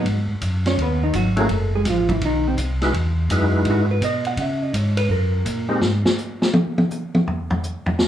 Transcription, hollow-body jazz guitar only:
0.67 C#4 C#5
0.82 B3 B4
1.03 D#3 D#4
1.16 F#3 F#4
1.40 A#3 A#4
1.53 A3 A4
1.75 G#3 G#4
1.90 F3 F4
2.11 E3 E4
2.25 D#3 D#4
2.47 C3 C4
3.71 F#4
3.91 B4
4.05 D#5
4.27 F#5
4.42 E5
4.62 D#5
4.76 C#5
4.97 B4
5.11 A#4

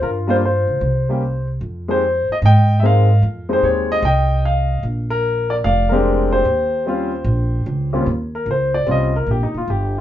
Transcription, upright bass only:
0.03 G2
0.67 C#2
0.81 C2
1.61 F2
2.29 muted upright bass stroke
2.42 G#2
3.22 F2
3.63 D#2
4.02 C2
4.83 A#1
5.64 F1
6.45 D#2
7.24 A#1
7.66 C#2
8.06 D#2
8.46 C#2
8.87 C2
9.27 A#1
9.41 G1
9.54 D#1
9.68 G1

